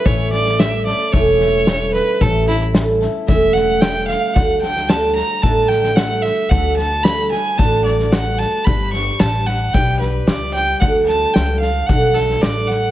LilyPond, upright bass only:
\new Staff \with { instrumentName = "Upright bass" } { \clef bass \time 4/4 \key d \major \tempo 4 = 112 a,,2 e,,2 | a,,2 e,,2 | d,2 a,,2 | d,2 a,,2 |
g,,4 a,,4 b,,4 cis,4 | d,4 cis,4 b,,4 a,,4 | }